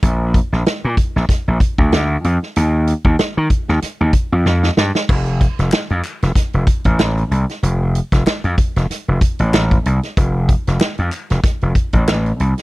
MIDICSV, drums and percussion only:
0, 0, Header, 1, 2, 480
1, 0, Start_track
1, 0, Tempo, 634249
1, 23, Time_signature, 4, 2, 24, 8
1, 9551, End_track
2, 0, Start_track
2, 0, Title_t, "Drums"
2, 22, Note_on_c, 9, 36, 118
2, 22, Note_on_c, 9, 42, 84
2, 97, Note_off_c, 9, 36, 0
2, 98, Note_off_c, 9, 42, 0
2, 260, Note_on_c, 9, 36, 97
2, 263, Note_on_c, 9, 42, 71
2, 336, Note_off_c, 9, 36, 0
2, 338, Note_off_c, 9, 42, 0
2, 399, Note_on_c, 9, 38, 33
2, 475, Note_off_c, 9, 38, 0
2, 502, Note_on_c, 9, 42, 72
2, 505, Note_on_c, 9, 38, 120
2, 578, Note_off_c, 9, 42, 0
2, 581, Note_off_c, 9, 38, 0
2, 736, Note_on_c, 9, 36, 91
2, 739, Note_on_c, 9, 42, 70
2, 812, Note_off_c, 9, 36, 0
2, 815, Note_off_c, 9, 42, 0
2, 880, Note_on_c, 9, 38, 40
2, 956, Note_off_c, 9, 38, 0
2, 975, Note_on_c, 9, 36, 86
2, 981, Note_on_c, 9, 38, 30
2, 982, Note_on_c, 9, 42, 82
2, 1051, Note_off_c, 9, 36, 0
2, 1056, Note_off_c, 9, 38, 0
2, 1058, Note_off_c, 9, 42, 0
2, 1213, Note_on_c, 9, 36, 83
2, 1218, Note_on_c, 9, 42, 77
2, 1288, Note_off_c, 9, 36, 0
2, 1293, Note_off_c, 9, 42, 0
2, 1350, Note_on_c, 9, 36, 88
2, 1426, Note_off_c, 9, 36, 0
2, 1455, Note_on_c, 9, 42, 70
2, 1459, Note_on_c, 9, 38, 120
2, 1531, Note_off_c, 9, 42, 0
2, 1534, Note_off_c, 9, 38, 0
2, 1699, Note_on_c, 9, 42, 76
2, 1775, Note_off_c, 9, 42, 0
2, 1837, Note_on_c, 9, 38, 32
2, 1913, Note_off_c, 9, 38, 0
2, 1937, Note_on_c, 9, 42, 93
2, 2012, Note_off_c, 9, 42, 0
2, 2175, Note_on_c, 9, 42, 71
2, 2250, Note_off_c, 9, 42, 0
2, 2306, Note_on_c, 9, 36, 86
2, 2382, Note_off_c, 9, 36, 0
2, 2413, Note_on_c, 9, 42, 74
2, 2416, Note_on_c, 9, 38, 116
2, 2489, Note_off_c, 9, 42, 0
2, 2492, Note_off_c, 9, 38, 0
2, 2650, Note_on_c, 9, 36, 90
2, 2650, Note_on_c, 9, 42, 66
2, 2725, Note_off_c, 9, 36, 0
2, 2725, Note_off_c, 9, 42, 0
2, 2787, Note_on_c, 9, 38, 38
2, 2863, Note_off_c, 9, 38, 0
2, 2892, Note_on_c, 9, 38, 34
2, 2894, Note_on_c, 9, 42, 90
2, 2968, Note_off_c, 9, 38, 0
2, 2969, Note_off_c, 9, 42, 0
2, 3127, Note_on_c, 9, 36, 90
2, 3127, Note_on_c, 9, 42, 82
2, 3202, Note_off_c, 9, 36, 0
2, 3202, Note_off_c, 9, 42, 0
2, 3372, Note_on_c, 9, 38, 55
2, 3448, Note_off_c, 9, 38, 0
2, 3506, Note_on_c, 9, 38, 60
2, 3581, Note_off_c, 9, 38, 0
2, 3611, Note_on_c, 9, 38, 92
2, 3687, Note_off_c, 9, 38, 0
2, 3746, Note_on_c, 9, 38, 79
2, 3822, Note_off_c, 9, 38, 0
2, 3852, Note_on_c, 9, 49, 100
2, 3853, Note_on_c, 9, 36, 107
2, 3928, Note_off_c, 9, 36, 0
2, 3928, Note_off_c, 9, 49, 0
2, 3981, Note_on_c, 9, 42, 34
2, 4057, Note_off_c, 9, 42, 0
2, 4093, Note_on_c, 9, 36, 90
2, 4094, Note_on_c, 9, 42, 69
2, 4169, Note_off_c, 9, 36, 0
2, 4170, Note_off_c, 9, 42, 0
2, 4230, Note_on_c, 9, 42, 57
2, 4231, Note_on_c, 9, 38, 32
2, 4306, Note_off_c, 9, 38, 0
2, 4306, Note_off_c, 9, 42, 0
2, 4327, Note_on_c, 9, 39, 101
2, 4337, Note_on_c, 9, 38, 108
2, 4402, Note_off_c, 9, 39, 0
2, 4413, Note_off_c, 9, 38, 0
2, 4464, Note_on_c, 9, 42, 31
2, 4539, Note_off_c, 9, 42, 0
2, 4572, Note_on_c, 9, 42, 77
2, 4574, Note_on_c, 9, 39, 85
2, 4648, Note_off_c, 9, 42, 0
2, 4649, Note_off_c, 9, 39, 0
2, 4711, Note_on_c, 9, 42, 53
2, 4712, Note_on_c, 9, 38, 38
2, 4786, Note_off_c, 9, 42, 0
2, 4788, Note_off_c, 9, 38, 0
2, 4809, Note_on_c, 9, 36, 86
2, 4813, Note_on_c, 9, 38, 32
2, 4815, Note_on_c, 9, 42, 83
2, 4885, Note_off_c, 9, 36, 0
2, 4889, Note_off_c, 9, 38, 0
2, 4891, Note_off_c, 9, 42, 0
2, 4944, Note_on_c, 9, 42, 31
2, 5020, Note_off_c, 9, 42, 0
2, 5048, Note_on_c, 9, 36, 94
2, 5050, Note_on_c, 9, 42, 78
2, 5123, Note_off_c, 9, 36, 0
2, 5126, Note_off_c, 9, 42, 0
2, 5179, Note_on_c, 9, 42, 46
2, 5186, Note_on_c, 9, 36, 83
2, 5254, Note_off_c, 9, 42, 0
2, 5261, Note_off_c, 9, 36, 0
2, 5293, Note_on_c, 9, 38, 124
2, 5297, Note_on_c, 9, 39, 101
2, 5369, Note_off_c, 9, 38, 0
2, 5372, Note_off_c, 9, 39, 0
2, 5431, Note_on_c, 9, 42, 39
2, 5507, Note_off_c, 9, 42, 0
2, 5537, Note_on_c, 9, 42, 81
2, 5613, Note_off_c, 9, 42, 0
2, 5672, Note_on_c, 9, 42, 49
2, 5673, Note_on_c, 9, 38, 36
2, 5748, Note_off_c, 9, 42, 0
2, 5749, Note_off_c, 9, 38, 0
2, 5776, Note_on_c, 9, 42, 84
2, 5852, Note_off_c, 9, 42, 0
2, 6017, Note_on_c, 9, 42, 68
2, 6092, Note_off_c, 9, 42, 0
2, 6147, Note_on_c, 9, 36, 88
2, 6151, Note_on_c, 9, 38, 32
2, 6151, Note_on_c, 9, 42, 54
2, 6222, Note_off_c, 9, 36, 0
2, 6227, Note_off_c, 9, 38, 0
2, 6227, Note_off_c, 9, 42, 0
2, 6256, Note_on_c, 9, 39, 90
2, 6258, Note_on_c, 9, 38, 107
2, 6332, Note_off_c, 9, 39, 0
2, 6333, Note_off_c, 9, 38, 0
2, 6386, Note_on_c, 9, 42, 36
2, 6462, Note_off_c, 9, 42, 0
2, 6492, Note_on_c, 9, 36, 93
2, 6496, Note_on_c, 9, 42, 73
2, 6568, Note_off_c, 9, 36, 0
2, 6572, Note_off_c, 9, 42, 0
2, 6631, Note_on_c, 9, 42, 54
2, 6633, Note_on_c, 9, 38, 36
2, 6707, Note_off_c, 9, 42, 0
2, 6708, Note_off_c, 9, 38, 0
2, 6739, Note_on_c, 9, 38, 35
2, 6741, Note_on_c, 9, 42, 83
2, 6815, Note_off_c, 9, 38, 0
2, 6816, Note_off_c, 9, 42, 0
2, 6972, Note_on_c, 9, 36, 89
2, 6977, Note_on_c, 9, 42, 81
2, 7048, Note_off_c, 9, 36, 0
2, 7053, Note_off_c, 9, 42, 0
2, 7106, Note_on_c, 9, 42, 51
2, 7182, Note_off_c, 9, 42, 0
2, 7219, Note_on_c, 9, 38, 124
2, 7220, Note_on_c, 9, 39, 93
2, 7294, Note_off_c, 9, 38, 0
2, 7295, Note_off_c, 9, 39, 0
2, 7351, Note_on_c, 9, 36, 94
2, 7353, Note_on_c, 9, 42, 33
2, 7426, Note_off_c, 9, 36, 0
2, 7429, Note_off_c, 9, 42, 0
2, 7459, Note_on_c, 9, 42, 84
2, 7534, Note_off_c, 9, 42, 0
2, 7593, Note_on_c, 9, 42, 54
2, 7594, Note_on_c, 9, 38, 34
2, 7669, Note_off_c, 9, 42, 0
2, 7670, Note_off_c, 9, 38, 0
2, 7698, Note_on_c, 9, 36, 112
2, 7698, Note_on_c, 9, 42, 95
2, 7774, Note_off_c, 9, 36, 0
2, 7774, Note_off_c, 9, 42, 0
2, 7937, Note_on_c, 9, 36, 97
2, 7940, Note_on_c, 9, 42, 69
2, 8013, Note_off_c, 9, 36, 0
2, 8015, Note_off_c, 9, 42, 0
2, 8077, Note_on_c, 9, 38, 34
2, 8077, Note_on_c, 9, 42, 54
2, 8152, Note_off_c, 9, 42, 0
2, 8153, Note_off_c, 9, 38, 0
2, 8175, Note_on_c, 9, 39, 92
2, 8180, Note_on_c, 9, 38, 122
2, 8251, Note_off_c, 9, 39, 0
2, 8255, Note_off_c, 9, 38, 0
2, 8307, Note_on_c, 9, 42, 35
2, 8382, Note_off_c, 9, 42, 0
2, 8415, Note_on_c, 9, 42, 73
2, 8416, Note_on_c, 9, 39, 80
2, 8491, Note_off_c, 9, 42, 0
2, 8492, Note_off_c, 9, 39, 0
2, 8552, Note_on_c, 9, 42, 51
2, 8553, Note_on_c, 9, 38, 42
2, 8628, Note_off_c, 9, 42, 0
2, 8629, Note_off_c, 9, 38, 0
2, 8655, Note_on_c, 9, 36, 97
2, 8658, Note_on_c, 9, 38, 37
2, 8659, Note_on_c, 9, 42, 82
2, 8730, Note_off_c, 9, 36, 0
2, 8733, Note_off_c, 9, 38, 0
2, 8735, Note_off_c, 9, 42, 0
2, 8789, Note_on_c, 9, 42, 30
2, 8865, Note_off_c, 9, 42, 0
2, 8894, Note_on_c, 9, 36, 82
2, 8896, Note_on_c, 9, 42, 76
2, 8969, Note_off_c, 9, 36, 0
2, 8971, Note_off_c, 9, 42, 0
2, 9025, Note_on_c, 9, 42, 47
2, 9031, Note_on_c, 9, 36, 89
2, 9101, Note_off_c, 9, 42, 0
2, 9107, Note_off_c, 9, 36, 0
2, 9142, Note_on_c, 9, 38, 124
2, 9144, Note_on_c, 9, 39, 97
2, 9218, Note_off_c, 9, 38, 0
2, 9220, Note_off_c, 9, 39, 0
2, 9278, Note_on_c, 9, 42, 38
2, 9354, Note_off_c, 9, 42, 0
2, 9382, Note_on_c, 9, 42, 80
2, 9458, Note_off_c, 9, 42, 0
2, 9518, Note_on_c, 9, 42, 51
2, 9520, Note_on_c, 9, 38, 35
2, 9551, Note_off_c, 9, 38, 0
2, 9551, Note_off_c, 9, 42, 0
2, 9551, End_track
0, 0, End_of_file